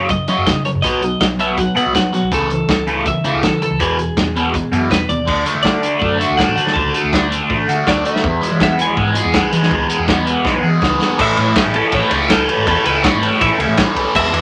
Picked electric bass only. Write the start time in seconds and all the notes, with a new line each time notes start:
Already playing: F#2
0.29 F#3
0.38 F#2
0.75 F#2
0.84 B1
1.21 B1
1.77 B2
1.86 B1
2.23 B1
2.32 C#2
2.69 C#2
3.24 C#3
3.34 C#2
3.71 C#2
3.80 E2
4.17 E2
4.72 F#2
4.91 E2
5.09 D#2
5.28 D2
5.55 D3
6.02 F#2
6.30 D2
6.48 A1
6.57 D3
6.66 D3
6.76 C#2
7.04 D2
7.50 A1
7.69 D3
7.87 D2
8.24 E2
8.51 E3
8.97 G#2
9.25 E2
9.43 B1
9.52 E3
9.61 E3
9.71 C#2
9.99 E2
10.45 B1
10.63 E3
10.82 C#2
11.19 A1
11.37 A2
11.65 A1
11.92 A1
12.11 C#2
12.57 G#1
12.67 E2
12.85 C#2
13.14 G#1
13.41 A1
13.58 C#2
13.68 A1
13.95 B1
14.15 E1
14.32 E2